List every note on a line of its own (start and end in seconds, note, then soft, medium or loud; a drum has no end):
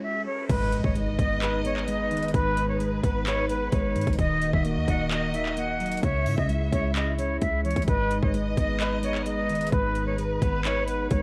0.00 0.26 G#3 medium
0.00 0.49 C#4 medium
0.00 0.22 E5 medium
0.00 riser medium
0.26 0.45 C#5 medium
0.49 0.83 G#1 loud
0.49 1.65 G#2 loud
0.49 4.15 G#3 medium
0.49 4.15 D#4 medium
0.49 0.82 B4 loud
0.49 4.15 B4 loud
0.49 2.30 D#5 loud
0.49 kick loud
0.49 closed hi-hat medium
0.49 crash loud
0.49 impact medium
0.72 closed hi-hat medium
0.84 1.17 G#1 loud
0.84 0.93 C#5 medium
0.84 kick medium
0.95 1.87 G#3 loud
0.95 closed hi-hat medium
1.19 2.12 G#1 loud
1.19 1.63 B3 medium
1.19 1.38 D#5 loud
1.19 kick medium
1.19 closed hi-hat medium
1.41 2.57 D#4 loud
1.41 1.60 B4 medium
1.41 clap loud
1.41 closed hi-hat medium
1.65 2.80 B3 loud
1.65 1.84 C#5 medium
1.65 closed hi-hat medium
1.76 clap medium
1.88 2.79 G#3 medium
1.88 2.31 D#5 loud
1.88 closed hi-hat medium
2.11 2.33 F#1 loud
2.11 3.26 D#3 medium
2.11 closed hi-hat soft
2.17 closed hi-hat medium
2.23 closed hi-hat medium
2.28 closed hi-hat medium
2.33 3.00 G#1 loud
2.33 3.49 G#2 medium
2.33 2.66 B4 loud
2.33 4.15 B4 loud
2.33 kick loud
2.33 closed hi-hat medium
2.57 closed hi-hat medium
2.68 2.78 C#5 medium
2.80 3.71 G#3 loud
2.80 closed hi-hat medium
3.03 3.70 G#1 loud
3.03 3.48 B3 medium
3.03 3.22 B4 medium
3.03 kick medium
3.03 closed hi-hat medium
3.26 4.19 D#4 loud
3.26 3.45 C#5 medium
3.26 clap loud
3.26 closed hi-hat medium
3.49 4.19 B3 medium
3.49 3.68 B4 medium
3.49 closed hi-hat medium
3.72 3.97 G#1 loud
3.72 4.19 G#3 loud
3.72 4.16 C#5 medium
3.72 kick loud
3.72 closed hi-hat medium
3.95 4.06 G#2 loud
3.95 4.18 D#3 medium
3.95 closed hi-hat soft
4.01 closed hi-hat medium
4.07 4.18 G#1 loud
4.07 kick medium
4.07 closed hi-hat medium
4.13 closed hi-hat medium
4.18 4.52 D#1 loud
4.18 6.01 D#3 medium
4.18 5.34 D#3 loud
4.18 6.01 A#3 medium
4.18 6.01 F#4 loud
4.18 5.99 D#5 loud
4.18 4.51 D#5 loud
4.18 kick loud
4.18 closed hi-hat medium
4.42 closed hi-hat medium
4.53 4.78 D#1 loud
4.53 4.63 E5 medium
4.53 kick medium
4.65 5.56 A#3 medium
4.65 closed hi-hat medium
4.76 4.87 D#2 loud
4.88 5.99 D#1 loud
4.88 5.33 D#4 medium
4.88 5.07 F#5 medium
4.88 kick medium
4.88 closed hi-hat medium
5.11 6.03 D#5 loud
5.11 5.30 D#5 medium
5.11 clap loud
5.11 closed hi-hat medium
5.34 6.03 D#4 medium
5.34 5.53 E5 medium
5.34 closed hi-hat medium
5.46 clap medium
5.57 6.03 A#3 medium
5.57 6.01 F#5 medium
5.57 closed hi-hat medium
5.80 6.03 F#3 medium
5.80 closed hi-hat soft
5.86 closed hi-hat medium
5.92 closed hi-hat medium
5.98 closed hi-hat medium
6.03 6.28 C#2 loud
6.03 7.86 C#3 medium
6.03 7.19 C#3 medium
6.03 11.22 G#3 medium
6.03 7.86 E4 loud
6.03 6.36 C#5 loud
6.03 7.38 E5 loud
6.03 kick loud
6.03 closed hi-hat medium
6.26 6.37 G#2 loud
6.26 open hi-hat medium
6.38 6.71 C#2 loud
6.38 6.47 D#5 medium
6.38 kick medium
6.49 7.41 G#3 medium
6.49 closed hi-hat medium
6.72 7.39 C#2 loud
6.72 7.17 C#4 medium
6.72 6.91 C#5 loud
6.72 kick medium
6.72 closed hi-hat medium
6.96 7.88 E4 loud
6.96 7.14 D#5 medium
6.96 clap loud
6.96 closed hi-hat medium
7.18 7.88 C#4 medium
7.18 7.37 C#5 medium
7.18 closed hi-hat medium
7.41 7.75 C#2 loud
7.41 7.88 G#3 medium
7.41 7.61 E5 medium
7.41 kick loud
7.41 closed hi-hat medium
7.64 7.88 E3 medium
7.64 7.83 C#5 medium
7.64 closed hi-hat soft
7.71 closed hi-hat medium
7.76 7.87 C#2 loud
7.76 kick medium
7.76 closed hi-hat medium
7.82 closed hi-hat medium
7.88 8.21 G#1 loud
7.88 9.03 G#2 loud
7.88 11.22 D#4 medium
7.88 11.22 B4 loud
7.88 8.20 B4 loud
7.88 9.69 D#5 loud
7.88 kick loud
7.88 closed hi-hat medium
8.11 closed hi-hat medium
8.22 8.56 G#1 loud
8.22 8.32 C#5 medium
8.22 kick loud
8.34 9.25 G#3 loud
8.34 closed hi-hat medium
8.57 9.51 G#1 loud
8.57 9.02 B3 medium
8.57 8.76 D#5 loud
8.57 kick medium
8.57 closed hi-hat medium
8.80 9.96 D#4 loud
8.80 8.99 B4 medium
8.80 clap loud
8.80 closed hi-hat medium
9.03 10.19 B3 medium
9.03 9.22 C#5 medium
9.03 closed hi-hat medium
9.15 clap medium
9.26 10.17 G#3 medium
9.26 9.70 D#5 medium
9.26 closed hi-hat medium
9.49 9.71 F#1 loud
9.49 10.65 D#3 medium
9.49 closed hi-hat soft
9.55 closed hi-hat medium
9.61 closed hi-hat medium
9.67 closed hi-hat medium
9.72 10.39 G#1 loud
9.72 10.88 G#2 medium
9.72 10.05 B4 loud
9.72 11.22 B4 loud
9.72 kick loud
9.72 closed hi-hat medium
9.95 closed hi-hat medium
10.07 10.16 C#5 medium
10.18 11.10 G#3 medium
10.18 closed hi-hat medium
10.42 11.08 G#1 loud
10.42 10.87 B3 medium
10.42 10.61 B4 medium
10.42 kick medium
10.42 closed hi-hat medium
10.64 11.22 D#4 loud
10.64 10.83 C#5 loud
10.64 clap loud
10.64 closed hi-hat medium
10.88 11.22 B3 medium
10.88 11.07 B4 medium
10.88 closed hi-hat medium
11.10 11.22 G#1 loud
11.10 11.22 G#3 loud
11.10 11.22 C#5 medium
11.10 kick loud
11.10 closed hi-hat medium